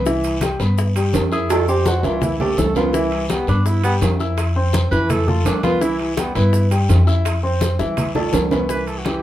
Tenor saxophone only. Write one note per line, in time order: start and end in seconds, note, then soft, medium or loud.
1.32 1.52 G#4 loud
1.51 1.68 A4 loud
1.68 1.89 G4 loud
1.87 2.06 F#4 medium
2.05 2.25 F4 medium
2.24 2.40 E4 medium
2.41 2.60 G4 medium
2.59 2.76 A4 medium
2.77 2.96 F4 medium
2.95 3.12 E4 medium
3.13 3.29 G3 medium
3.31 3.48 B3 medium
3.48 3.68 D4 medium
3.67 3.83 E4 medium
3.84 3.95 B3 medium
4.91 5.11 B4 loud
5.10 5.30 A4 medium
5.28 5.47 F4 loud
5.46 5.63 D4 medium
5.63 5.83 F4 loud
5.82 5.99 E4 loud
6.00 6.16 G3 medium
6.18 6.34 B3 medium
6.35 6.69 E4 medium